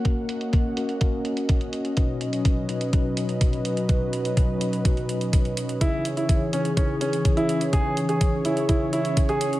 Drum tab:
HH |x-xxx-xxx-xxxxxx|x-xxx-xxx-xxxxxx|x-xxx-xxxxxxxxxx|x-xxx-xxx-xxxxxx|
BD |o---o---o---o---|o---o---o---o---|o---o---o---o---|o---o---o---o---|

HH |x-xxx-xxx-xxxxxx|
BD |o---o---o---o---|